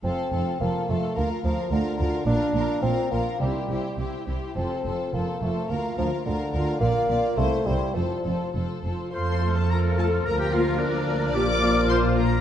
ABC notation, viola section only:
X:1
M:2/4
L:1/16
Q:1/4=106
K:F
V:1 name="Viola section"
F2 F2 F2 F2 | F2 F2 F2 F2 | F2 F2 F2 F2 | E2 E2 E2 E2 |
F2 F2 F2 F2 | F2 F2 F2 F2 | F2 F2 E2 E2 | F2 F2 F2 F2 |
c3 A B2 A2 | B G F2 D4 | d4 c2 B2 |]